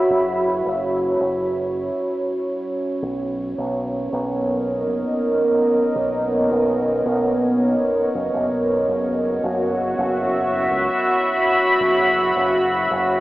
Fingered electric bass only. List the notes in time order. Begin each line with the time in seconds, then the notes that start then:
0.10 F#1
0.65 F#1
1.20 F#1
3.02 B1
3.58 B1
4.12 B1
4.86 F#1
5.95 B1
6.51 B1
7.05 B1
8.15 F#1
8.34 F#1
8.51 B1
8.88 F#1
9.43 F#1
9.98 F#1
10.71 C#2
11.80 F#1
12.36 F#1
12.91 F#1